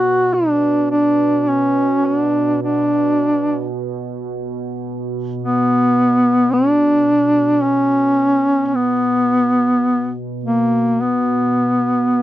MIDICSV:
0, 0, Header, 1, 3, 480
1, 0, Start_track
1, 0, Key_signature, 2, "minor"
1, 0, Tempo, 1136364
1, 1342, Tempo, 1113173
1, 1819, Time_signature, 4, 2, 24, 8
1, 4222, Tempo, 1178782
1, 5186, End_track
2, 0, Start_track
2, 0, Title_t, "Duduk"
2, 0, Program_c, 0, 69
2, 0, Note_on_c, 0, 66, 82
2, 143, Note_on_c, 0, 62, 72
2, 149, Note_off_c, 0, 66, 0
2, 381, Note_off_c, 0, 62, 0
2, 383, Note_on_c, 0, 62, 77
2, 626, Note_on_c, 0, 61, 66
2, 632, Note_off_c, 0, 62, 0
2, 867, Note_on_c, 0, 62, 70
2, 874, Note_off_c, 0, 61, 0
2, 1106, Note_off_c, 0, 62, 0
2, 1108, Note_on_c, 0, 62, 71
2, 1564, Note_off_c, 0, 62, 0
2, 2309, Note_on_c, 0, 59, 89
2, 2791, Note_on_c, 0, 62, 88
2, 2797, Note_off_c, 0, 59, 0
2, 3261, Note_on_c, 0, 61, 74
2, 3267, Note_off_c, 0, 62, 0
2, 3710, Note_off_c, 0, 61, 0
2, 3710, Note_on_c, 0, 61, 60
2, 3744, Note_on_c, 0, 59, 76
2, 3751, Note_off_c, 0, 61, 0
2, 4352, Note_off_c, 0, 59, 0
2, 4461, Note_on_c, 0, 58, 62
2, 4694, Note_on_c, 0, 59, 64
2, 4700, Note_off_c, 0, 58, 0
2, 5186, Note_off_c, 0, 59, 0
2, 5186, End_track
3, 0, Start_track
3, 0, Title_t, "Ambient pad"
3, 0, Program_c, 1, 92
3, 0, Note_on_c, 1, 47, 47
3, 5186, Note_off_c, 1, 47, 0
3, 5186, End_track
0, 0, End_of_file